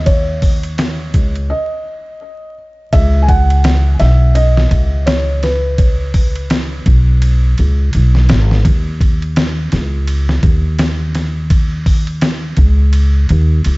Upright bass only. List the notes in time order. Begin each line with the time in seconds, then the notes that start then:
Already playing: D#2
1.15 C#2
2.93 C#2
4.01 B1
4.71 C#2
6.86 B1
7.59 C#2
7.95 B1
8.30 G#1
8.65 D#2
9.73 C#2
10.43 D#2
12.58 C#2
13.30 D#2
13.66 C#2